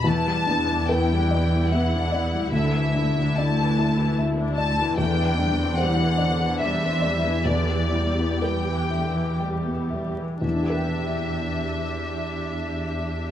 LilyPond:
<<
  \new Staff \with { instrumentName = "Violin section" } { \time 3/4 \key e \minor \tempo 4 = 71 a''4 g''4 fis''4 | e''4 a''4 r8 a''8 | g''4 fis''4 e''4 | d''4 g''4 r4 |
e''2. | }
  \new Staff \with { instrumentName = "Felt piano" } { \time 3/4 \key e \minor e,8 d'8 b'8 d''8 e''8 d''8 | d,8 d'8 d''8 e'8 e''8 d''8 | e,8 d'8 c''8 d''8 e''8 d''8 | e,8 e'8 b'8 e''8 g''8 e''8 |
<e, e d' g' b' g''>2. | }
  \new Staff \with { instrumentName = "Harp" } { \time 3/4 \key e \minor << { <b b'>2. | r2. | r2. | r2. |
<e d' e' g' b' g''>2. | } \\ { \tuplet 3/2 { e8 b8 d'8 e'8 b'8 d''8 e''8 d''8 e'8 } | \tuplet 3/2 { d8 a8 d'8 e'8 d''8 e'8 e''8 d''8 e'8 } | \tuplet 3/2 { e8 c'8 d'8 e'8 c''8 d''8 e''8 d''8 e'8 } | \tuplet 3/2 { e8 b8 e'8 g'8 b'8 e''8 g''8 e''8 g'8~ } |
g'2. | } >> }
  \new Staff \with { instrumentName = "Viola section" } { \clef bass \time 3/4 \key e \minor << { e'2.~ | e'2. | d'2. | g'2~ g'8. r16 |
g'2. | } \\ { e16 g16 b16 d'16 b16 g16 e16 g16 b16 d'16 b16 g16 | d16 e16 a16 d'16 a16 e16 d16 e16 a16 d'16 a16 e16 | d16 e16 g16 c'16 g16 e16 d16 e16 g16 c'16 g16 e16 | d16 e16 g16 b16 g16 e16 d16 e16 g16 b16 g16 e16 |
d'2. | } >> }
  \new Staff \with { instrumentName = "Cello section" } { \clef bass \time 3/4 \key e \minor e,2. | d,2. | e,2.~ | e,2~ e,8. r16 |
e,2. | }
>>